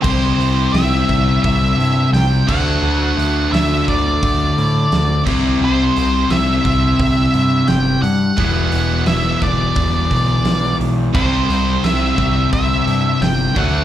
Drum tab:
CC |x------x|-------x|--------|--------|
HH |-oooooo-|-oooooo-|-ooooooo|oooooooo|
SD |--o---o-|--o---o-|--o---o-|--o---o-|
BD |o--oo--o|---oo--o|---oo---|o--ooo--|

CC |x-------|
HH |-ooooooo|
SD |--o---o-|
BD |o--oo--o|